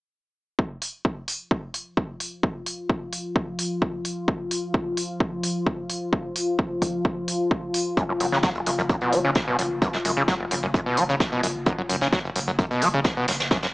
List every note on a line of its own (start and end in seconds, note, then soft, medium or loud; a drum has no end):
0.59 13.74 F3 medium
0.59 13.74 F4 medium
0.59 kick loud
0.82 open hi-hat loud
1.05 kick loud
1.28 open hi-hat loud
1.51 kick loud
1.74 open hi-hat loud
1.97 kick loud
2.20 open hi-hat loud
2.43 kick loud
2.66 open hi-hat loud
2.89 kick loud
3.13 open hi-hat loud
3.36 kick loud
3.59 open hi-hat loud
3.82 kick loud
4.05 open hi-hat loud
4.28 kick loud
4.51 open hi-hat loud
4.74 kick loud
4.97 open hi-hat loud
5.20 kick loud
5.43 open hi-hat loud
5.67 kick loud
5.90 open hi-hat loud
6.13 kick loud
6.36 open hi-hat loud
6.59 kick loud
6.82 kick medium
6.82 open hi-hat loud
7.05 kick loud
7.28 open hi-hat loud
7.51 kick loud
7.74 open hi-hat loud
7.97 8.04 F#2 medium
7.97 kick loud
7.97 closed hi-hat medium
8.09 8.13 F#2 medium
8.20 8.32 F#1 loud
8.20 8.27 F#2 medium
8.20 closed hi-hat medium
8.20 open hi-hat loud
8.32 8.43 F#1 medium
8.32 8.38 C#3 loud
8.32 snare soft
8.43 8.50 F#3 medium
8.43 kick loud
8.43 snare loud
8.43 closed hi-hat medium
8.55 8.61 F#1 medium
8.55 closed hi-hat soft
8.66 8.78 F#1 medium
8.66 8.70 F#2 medium
8.66 closed hi-hat medium
8.66 open hi-hat loud
8.78 8.89 F#1 medium
8.78 8.82 F#2 loud
8.78 closed hi-hat soft
8.89 8.96 F#2 medium
8.89 kick loud
8.89 closed hi-hat medium
9.01 9.14 B2 loud
9.01 closed hi-hat soft
9.12 9.24 F#1 loud
9.12 9.19 F#3 loud
9.12 closed hi-hat medium
9.12 open hi-hat loud
9.24 9.35 F#1 medium
9.24 9.31 C#3 loud
9.35 kick loud
9.35 snare loud
9.35 closed hi-hat medium
9.48 9.57 B2 loud
9.59 9.70 F#1 loud
9.59 9.63 F#2 medium
9.59 closed hi-hat medium
9.59 open hi-hat loud
9.71 9.82 F#1 medium
9.82 9.88 F#2 medium
9.82 kick loud
9.82 closed hi-hat medium
9.93 9.97 F#2 medium
9.93 snare medium
10.05 10.16 F#1 medium
10.05 10.11 F#2 medium
10.05 closed hi-hat medium
10.05 open hi-hat loud
10.17 10.28 F#1 medium
10.17 10.23 C#3 loud
10.28 10.35 F#3 medium
10.28 kick loud
10.28 snare loud
10.28 closed hi-hat medium
10.40 10.46 F#1 medium
10.51 10.62 F#1 loud
10.51 10.55 F#2 medium
10.51 closed hi-hat medium
10.51 open hi-hat loud
10.63 10.74 F#1 medium
10.63 10.67 F#2 loud
10.74 10.81 F#2 medium
10.74 kick loud
10.74 closed hi-hat medium
10.86 10.99 B2 loud
10.97 11.09 F#1 loud
10.97 11.04 F#3 loud
10.97 closed hi-hat medium
10.97 open hi-hat loud
11.09 11.20 F#1 medium
11.09 11.15 C#3 loud
11.09 closed hi-hat soft
11.20 kick loud
11.20 snare loud
11.20 closed hi-hat medium
11.32 11.41 B2 loud
11.32 closed hi-hat soft
11.43 11.55 F#1 loud
11.43 11.47 F#2 medium
11.43 closed hi-hat medium
11.43 open hi-hat loud
11.55 11.66 F#1 medium
11.66 11.73 F#2 medium
11.66 kick loud
11.66 closed hi-hat medium
11.78 11.82 F#2 medium
11.89 12.01 F#1 loud
11.89 11.96 F#2 medium
11.89 closed hi-hat medium
11.89 open hi-hat loud
12.01 12.12 F#1 medium
12.01 12.08 C#3 loud
12.01 snare soft
12.13 12.19 F#3 medium
12.13 kick loud
12.13 snare loud
12.13 closed hi-hat medium
12.25 12.31 F#1 medium
12.25 closed hi-hat soft
12.36 12.47 F#1 loud
12.36 12.40 F#2 medium
12.36 closed hi-hat medium
12.36 open hi-hat medium
12.48 12.59 F#1 medium
12.48 12.51 F#2 loud
12.48 closed hi-hat soft
12.59 12.65 F#2 medium
12.59 kick loud
12.59 closed hi-hat medium
12.71 12.83 B2 loud
12.71 closed hi-hat soft
12.82 12.93 F#1 loud
12.82 12.88 F#3 loud
12.82 closed hi-hat medium
12.82 open hi-hat loud
12.94 13.05 F#1 medium
12.94 13.00 C#3 loud
13.04 kick loud
13.04 snare loud
13.04 closed hi-hat medium
13.17 13.26 B2 loud
13.28 13.39 F#1 loud
13.28 13.32 F#2 medium
13.28 snare loud
13.28 closed hi-hat medium
13.28 open hi-hat loud
13.40 13.51 F#1 medium
13.40 snare loud
13.40 closed hi-hat medium
13.51 13.58 F#2 medium
13.51 kick loud
13.51 snare loud
13.51 closed hi-hat medium
13.63 13.67 F#2 medium
13.63 snare loud
13.63 closed hi-hat medium